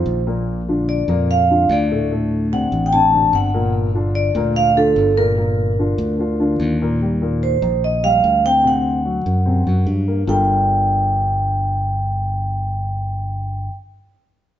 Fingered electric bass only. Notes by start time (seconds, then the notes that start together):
0.06 A#1
1.08 F2
1.69 D2
2.72 A1
3.33 G1
4.35 D2
4.96 G1
5.98 D2
6.60 D#2
7.62 A#1
8.24 D2
9.26 F#2
9.67 F#2
9.87 G2
10.27 G1